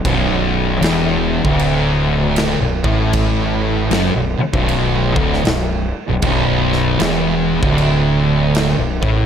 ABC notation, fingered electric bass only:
X:1
M:4/4
L:1/16
Q:"Swing" 1/4=78
K:Bm
V:1 name="Fingered electric bass" clef=bass
B,,,,4 E,,,3 D,,,6 B,,,, A,,,2- | A,,,4 F,,, B,,,, z B,,,,3 D,,,2 B,,,,2 z B,,,, | B,,,,4 E,,,3 D,,,6 B,,,, A,,,2 |]